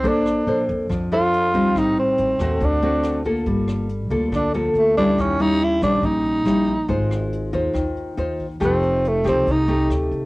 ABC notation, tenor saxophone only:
X:1
M:4/4
L:1/8
Q:1/4=140
K:Bb
V:1 name="Tenor saxophone"
D3 z2 F3 | E C3 D3 z | [K:Gm] z4 D F, A, D | _D E _F =D E4 |
z8 | C2 A, C E2 z2 |]